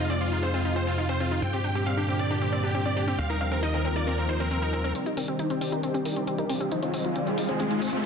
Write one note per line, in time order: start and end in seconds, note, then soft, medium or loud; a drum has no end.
0.00 1.40 F2 medium
0.00 1.39 C3 medium
0.00 1.40 F3 medium
0.00 1.40 G#3 medium
0.00 1.40 D#4 medium
0.00 1.40 F4 medium
0.10 0.14 C4 medium
0.10 0.18 D5 medium
0.21 0.25 C4 medium
0.21 0.29 F4 medium
0.32 0.36 D#4 medium
0.32 0.40 F4 medium
0.43 0.47 C4 medium
0.43 0.51 C5 medium
0.54 0.58 C4 medium
0.54 0.62 F4 medium
0.65 0.69 D#4 medium
0.65 0.73 F4 medium
0.76 0.80 C4 medium
0.76 0.84 C5 medium
0.87 0.91 C4 medium
0.87 0.95 F4 medium
0.98 1.02 D#4 medium
0.98 1.06 F4 medium
1.09 1.13 C4 medium
1.09 1.18 C5 medium
1.20 1.24 C4 medium
1.20 1.29 F4 medium
1.31 1.35 D#4 medium
1.31 1.40 F4 medium
1.42 3.16 G2 medium
1.42 3.17 A#2 medium
1.42 3.17 D3 medium
1.42 4.92 G3 medium
1.42 1.46 C4 medium
1.42 3.17 D4 medium
1.42 3.17 G4 medium
1.42 1.51 G5 loud
1.53 1.57 C4 medium
1.53 1.62 G4 medium
1.64 1.68 D4 medium
1.64 1.73 G5 medium
1.75 1.79 C4 medium
1.75 1.84 G4 medium
1.86 1.91 C4 medium
1.86 1.95 F5 medium
1.97 2.02 D4 medium
1.97 2.06 G4 medium
2.08 2.13 C4 medium
2.08 2.17 G4 medium
2.19 2.24 C4 medium
2.19 2.28 D5 medium
2.30 2.35 D4 medium
2.30 2.39 G4 medium
2.41 2.46 C4 medium
2.41 2.50 G4 medium
2.52 2.57 C4 medium
2.52 2.61 D5 medium
2.63 2.68 D4 medium
2.63 2.72 G4 medium
2.74 2.79 C4 medium
2.74 2.83 G4 medium
2.85 2.90 C4 medium
2.85 2.94 D5 medium
2.97 3.01 D4 medium
2.97 3.05 G4 medium
3.08 3.12 C4 medium
3.08 3.16 G4 medium
3.19 4.93 D#2 medium
3.19 4.93 D#3 medium
3.19 4.93 F3 medium
3.19 4.93 A#3 medium
3.19 3.23 C4 medium
3.19 4.93 F4 medium
3.19 3.27 F5 loud
3.30 3.34 D#4 medium
3.30 3.38 A#4 medium
3.41 3.45 C4 medium
3.41 3.49 F5 medium
3.52 3.56 C4 medium
3.52 3.60 A#4 medium
3.63 3.67 D#4 medium
3.63 3.71 D#5 medium
3.74 3.78 C4 medium
3.74 3.82 A#4 medium
3.85 3.89 C4 medium
3.85 3.93 A#4 medium
3.96 4.00 D#4 medium
3.96 4.04 D5 medium
4.07 4.11 C4 medium
4.07 4.15 A#4 medium
4.18 4.22 C4 medium
4.18 4.26 A#4 medium
4.29 4.33 D#4 medium
4.29 4.37 C5 medium
4.40 4.44 C4 medium
4.40 4.48 A#4 medium
4.51 4.55 C4 medium
4.51 4.59 A#4 medium
4.62 4.66 D#4 medium
4.62 4.70 A#4 medium
4.73 4.77 C4 medium
4.73 4.82 A#4 medium
4.84 4.88 C4 medium
4.84 4.93 A#4 medium
4.95 6.70 D#3 medium
4.95 6.70 G3 medium
4.95 6.70 C4 medium
4.95 4.99 C4 medium
4.95 6.70 D4 medium
4.95 6.70 G4 medium
4.95 5.04 A#4 medium
4.95 5.04 D5 loud
4.95 closed hi-hat medium
4.95 riser medium
5.06 5.10 D#4 medium
5.06 5.15 G4 medium
5.06 closed hi-hat soft
5.17 5.21 C4 medium
5.17 5.26 A#4 medium
5.17 5.26 D5 medium
5.17 open hi-hat loud
5.28 5.32 C4 medium
5.28 5.37 G4 medium
5.28 closed hi-hat soft
5.39 5.48 D#4 medium
5.39 5.43 D#4 medium
5.39 5.48 C5 medium
5.39 closed hi-hat medium
5.50 5.54 C4 medium
5.50 5.59 G4 medium
5.50 closed hi-hat soft
5.61 5.66 C4 medium
5.61 5.70 G4 medium
5.61 open hi-hat medium
5.72 5.77 D#4 medium
5.72 5.81 G4 medium
5.72 5.81 A#4 medium
5.72 closed hi-hat soft
5.83 5.88 C4 medium
5.83 5.92 G4 medium
5.83 closed hi-hat medium
5.94 5.99 C4 medium
5.94 6.03 G4 medium
5.94 closed hi-hat soft
6.05 6.10 D#4 medium
6.05 6.14 G4 medium
6.05 6.14 A#4 medium
6.05 open hi-hat medium
6.16 6.21 C4 medium
6.16 6.25 G4 medium
6.16 closed hi-hat soft
6.27 6.32 C4 medium
6.27 6.36 G4 medium
6.27 closed hi-hat medium
6.38 6.43 D#4 medium
6.38 6.47 G4 medium
6.38 6.47 A#4 medium
6.38 closed hi-hat soft
6.49 6.54 C4 medium
6.49 6.58 G4 medium
6.49 open hi-hat medium
6.60 6.65 C4 medium
6.60 6.69 G4 medium
6.60 closed hi-hat soft
6.71 8.06 D#3 medium
6.71 8.06 G#3 medium
6.71 8.06 C4 medium
6.71 6.76 D#4 medium
6.71 8.06 F4 medium
6.71 8.06 G#4 medium
6.71 6.80 C5 medium
6.71 6.80 D#5 loud
6.71 closed hi-hat medium
6.82 6.87 C4 medium
6.82 6.91 F4 medium
6.82 closed hi-hat soft
6.93 6.98 C4 medium
6.93 7.02 C5 medium
6.93 7.02 D#5 medium
6.93 open hi-hat loud
7.05 7.09 D#4 medium
7.05 7.13 F4 medium
7.05 closed hi-hat soft
7.16 7.20 C4 medium
7.16 7.24 F4 medium
7.16 7.24 D5 medium
7.16 closed hi-hat medium
7.27 7.31 C4 medium
7.27 7.35 F4 medium
7.27 closed hi-hat soft
7.38 7.42 D#4 medium
7.38 7.46 F4 medium
7.38 open hi-hat medium
7.49 7.53 C4 medium
7.49 7.57 G#4 medium
7.49 7.57 C5 medium
7.49 closed hi-hat soft
7.60 7.64 C4 medium
7.60 7.68 F4 medium
7.60 closed hi-hat medium
7.71 7.75 D#4 medium
7.71 7.79 F4 medium
7.71 closed hi-hat soft
7.82 7.86 C4 medium
7.82 7.90 G#4 medium
7.82 7.90 C5 medium
7.82 open hi-hat loud
7.93 7.97 C4 medium
7.93 8.01 F4 medium
7.93 closed hi-hat soft